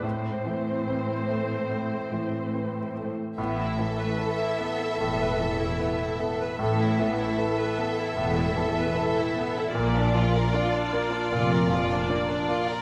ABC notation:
X:1
M:4/4
L:1/16
Q:1/4=76
K:Am
V:1 name="Violin section"
z16 | e16 | e16 | d16 |]
V:2 name="Viola section"
[Cc]12- [Cc]3 z | A16 | A16 | F16 |]
V:3 name="Violin section"
z16 | B, E A B A E B, E A B A E B, E A B | A E B, E A B A E B, E A B A E B, E | _B, D F _B F D B, D F B F D B, D F B |]
V:4 name="Grand piano"
A,,2 E,2 [CB]2 A,2 A,,2 E,2 [CB]2 A,2 | A,,2 E,2 [EB]2 B,2 A,,2 E,2 [EB]2 B,2 | A,,2 E,2 [EB]2 B,2 A,,2 E,2 [EB]2 B,2 | _B,,2 F,2 [Dd]2 _B,2 B,,2 F,2 [Dd]2 B,2 |]
V:5 name="Cello section" clef=bass
A,,12- A,,3 z | A,,4 z4 E,,4 z4 | A,,4 z4 E,,4 z4 | _B,,4 z4 F,,4 z4 |]
V:6 name="Double bass section" clef=bass
z16 | A,,,4 z4 E,,,4 z4 | A,,,4 z4 E,,,4 z4 | _B,,,4 z4 F,,,4 z4 |]